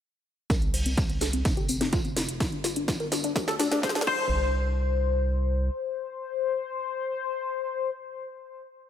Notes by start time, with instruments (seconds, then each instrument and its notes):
0.50 analog synth bass C2, synth arpeggio sound A#4, kick, snare, closed hi-hat, tambourine
0.62 synth arpeggio sound C4, closed hi-hat
0.74 synth arpeggio sound C5, open hi-hat
0.86 synth arpeggio sound C4, closed hi-hat
0.97 synth arpeggio sound C4, kick, snare, closed hi-hat, tambourine
1.10 synth arpeggio sound C4, closed hi-hat
1.21 synth arpeggio sound A4, snare, open hi-hat, tambourine
1.33 synth arpeggio sound C4, closed hi-hat
1.45 analog synth bass F1, synth arpeggio sound C4, kick, snare, closed hi-hat, tambourine
1.57 synth arpeggio sound G4, closed hi-hat
1.68 synth arpeggio sound C4, open hi-hat, tambourine
1.81 synth arpeggio sound C4, snare, closed hi-hat
1.93 synth arpeggio sound F4, kick, snare, closed hi-hat, tambourine
2.05 synth arpeggio sound C4, closed hi-hat
2.16 synth arpeggio sound C4, snare, open hi-hat, tambourine
2.29 closed hi-hat
2.40 analog synth bass G1, synth arpeggio sound D4, kick, snare, closed hi-hat, tambourine
2.52 synth arpeggio sound D4, closed hi-hat
2.64 synth arpeggio sound F4, snare, open hi-hat, tambourine
2.76 synth arpeggio sound D4, closed hi-hat
2.88 synth arpeggio sound D4, kick, snare, closed hi-hat, tambourine
3.00 synth arpeggio sound A#4, closed hi-hat
3.12 synth arpeggio sound D4, snare, open hi-hat, tambourine
3.24 synth arpeggio sound D4, closed hi-hat
3.36 analog synth bass D2, synth arpeggio sound D4, kick, snare, closed hi-hat, tambourine
3.48 synth arpeggio sound A4, snare, closed hi-hat
3.60 synth arpeggio sound D4, snare, open hi-hat, tambourine
3.71 synth arpeggio sound D4, snare, closed hi-hat
3.82 synth arpeggio sound C5, kick, snare, closed hi-hat, tambourine
3.89 snare
3.95 synth arpeggio sound D4, snare, closed hi-hat
4.01 snare
4.07 analog synth bass C2, synth arpeggio sound C5, kick, crash